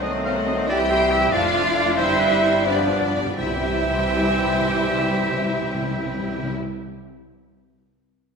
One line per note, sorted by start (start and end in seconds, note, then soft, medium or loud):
0.00 0.64 C2 medium
0.00 0.67 D#3 medium
0.00 0.12 F#3 medium
0.00 0.69 F#3 medium
0.00 0.66 A3 medium
0.00 0.67 A3 loud
0.00 0.68 C4 loud
0.00 0.13 F#4 medium
0.00 0.13 A4 medium
0.00 0.67 C5 loud
0.00 0.68 C5 loud
0.00 0.13 D#5 medium
0.00 0.71 D#5 medium
0.00 0.12 D#5 medium
0.11 0.24 A3 medium
0.11 0.24 D#4 medium
0.11 0.23 C5 medium
0.11 0.23 F#5 medium
0.23 0.35 F#3 medium
0.23 0.35 F#4 medium
0.23 0.34 A4 medium
0.23 0.34 D#5 medium
0.23 0.35 F5 medium
0.34 0.47 A3 medium
0.34 0.47 D#4 medium
0.34 0.46 C5 medium
0.34 0.46 F#5 medium
0.46 0.58 F#3 medium
0.46 0.58 F#4 medium
0.46 0.57 A4 medium
0.46 0.57 D#5 medium
0.56 0.69 A3 medium
0.56 0.69 D#4 medium
0.56 0.68 C5 medium
0.56 0.68 F#5 medium
0.67 1.31 C2 loud
0.67 0.79 E3 medium
0.67 1.33 E3 loud
0.67 1.33 G3 medium
0.67 1.33 C4 medium
0.67 1.33 E4 loud
0.67 1.32 G4 loud
0.67 0.79 G4 medium
0.67 0.79 D5 loud
0.67 0.78 E5 medium
0.67 1.34 E5 medium
0.67 1.32 G5 loud
0.67 1.33 G5 loud
0.78 0.90 G3 medium
0.78 0.90 E4 medium
0.78 0.89 C5 medium
0.78 0.89 G5 medium
0.88 1.00 E3 medium
0.88 1.01 G4 medium
0.88 1.13 C5 loud
0.88 1.00 E5 medium
0.99 1.11 G3 medium
0.99 1.11 E4 medium
0.99 1.11 C5 medium
0.99 1.11 G5 medium
1.10 1.21 E3 medium
1.10 1.21 G4 medium
1.10 1.20 E5 medium
1.10 1.33 E5 loud
1.21 1.32 G3 medium
1.21 1.32 E4 medium
1.21 1.32 C5 medium
1.21 1.32 G5 medium
1.31 1.98 F1 loud
1.31 1.42 F3 medium
1.31 1.98 F3 loud
1.31 1.96 A3 loud
1.31 1.96 D4 loud
1.31 1.42 D4 medium
1.31 1.97 D4 loud
1.31 1.42 F4 medium
1.31 1.97 F4 loud
1.31 1.42 D5 medium
1.31 1.96 D5 loud
1.31 1.97 D5 loud
1.31 1.96 F5 loud
1.31 1.98 F5 loud
1.42 1.53 A3 medium
1.42 1.53 F4 medium
1.42 1.53 A4 medium
1.42 1.53 F5 medium
1.53 1.64 F3 medium
1.53 1.64 D4 medium
1.53 1.64 F4 medium
1.53 1.64 D5 medium
1.64 1.75 A3 medium
1.64 1.75 F4 medium
1.64 1.75 A4 medium
1.64 1.75 F5 medium
1.74 1.85 F3 medium
1.74 1.85 D4 medium
1.74 1.85 F4 medium
1.74 1.86 D5 medium
1.84 1.97 A3 medium
1.84 1.97 F4 medium
1.84 1.97 A4 medium
1.84 1.97 F5 medium
1.96 3.15 G1 loud
1.96 2.07 E3 medium
1.96 2.66 G3 loud
1.96 2.65 G3 medium
1.96 2.66 C4 loud
1.96 2.65 C4 medium
1.96 2.66 E4 loud
1.96 2.07 G4 medium
1.96 2.21 C5 loud
1.96 2.68 C5 loud
1.96 2.08 E5 loud
1.96 2.65 E5 loud
2.07 2.19 G3 medium
2.07 2.20 E4 medium
2.07 2.20 C5 medium
2.07 2.20 G5 medium
2.19 2.31 E3 medium
2.19 2.31 G4 medium
2.19 2.42 B4 loud
2.19 2.31 E5 medium
2.30 2.42 G3 medium
2.30 2.43 E4 medium
2.30 2.43 C5 medium
2.30 2.43 G5 medium
2.42 2.53 E3 medium
2.42 2.53 G4 medium
2.42 2.65 C5 loud
2.42 2.54 E5 medium
2.54 2.66 G3 medium
2.54 2.66 E4 medium
2.54 2.66 C5 medium
2.54 2.66 G5 medium
2.65 2.73 G2 soft
2.65 3.14 F3 loud
2.65 2.77 F3 medium
2.65 3.15 F3 loud
2.65 3.13 B3 medium
2.65 3.37 B3 loud
2.65 3.38 D4 loud
2.65 2.77 G4 medium
2.65 3.14 B4 medium
2.65 2.83 B4 medium
2.65 3.38 D5 loud
2.65 2.77 D5 medium
2.65 3.38 D5 loud
2.65 2.76 F5 medium
2.74 2.81 G2 medium
2.74 2.90 F4 medium
2.74 2.89 B4 medium
2.74 2.89 G5 medium
2.78 2.90 G3 medium
2.83 2.90 G2 medium
2.88 2.98 G2 medium
2.88 3.02 F3 medium
2.88 3.02 G4 medium
2.88 3.01 D5 medium
2.88 3.01 F5 medium
3.00 3.07 G2 medium
3.00 3.14 G3 medium
3.00 3.14 F4 medium
3.00 3.14 B4 medium
3.00 3.14 G5 medium
3.08 3.15 G2 medium
3.14 3.24 G2 loud
3.14 3.26 F3 medium
3.14 3.26 G4 medium
3.14 3.25 D5 medium
3.14 3.25 F5 medium
3.25 3.33 G2 loud
3.25 3.38 G3 medium
3.25 3.38 F4 medium
3.25 3.38 B4 medium
3.25 3.36 G5 medium
3.36 6.50 C2 medium
3.36 3.45 C3 loud
3.36 6.50 E3 medium
3.36 6.52 G3 loud
3.36 6.53 G3 loud
3.36 6.53 C4 loud
3.36 6.51 E4 loud
3.36 6.52 E4 loud
3.36 6.53 G4 medium
3.36 6.52 C5 loud
3.36 6.52 E5 loud
3.36 6.53 E5 loud
3.36 6.51 G5 medium
3.36 6.52 G5 medium
3.46 3.53 C3 medium
3.53 3.61 C3 loud
3.61 3.68 C3 medium
3.69 3.76 C3 loud
3.76 3.83 C3 medium
3.83 3.91 C3 loud
3.91 3.99 C3 medium
3.99 4.06 C3 medium
4.07 4.14 C3 loud
4.15 4.22 C3 loud
4.22 4.30 C3 loud
4.30 4.38 C3 loud
4.38 4.46 C3 medium
4.46 4.53 C3 medium
4.54 4.61 C3 medium
4.61 4.69 C3 loud
4.69 4.76 C3 medium
4.76 4.84 C3 medium
4.84 4.92 C3 medium
4.92 4.99 C3 loud
4.99 5.07 C3 loud
5.07 5.15 C3 loud
5.15 5.23 C3 medium
5.23 5.30 C3 loud
5.30 5.38 C3 loud
5.38 5.46 C3 loud
5.46 5.53 C3 loud
5.53 5.60 C3 medium
5.60 5.67 C3 loud
5.67 5.74 C3 medium
5.74 5.82 C3 loud
5.82 5.89 C3 loud
5.89 5.97 C3 loud
5.97 6.04 C3 loud
6.05 6.12 C3 medium
6.12 6.19 C3 loud
6.19 6.27 C3 medium
6.27 6.35 C3 loud
6.35 6.43 C3 medium
6.43 6.51 C3 loud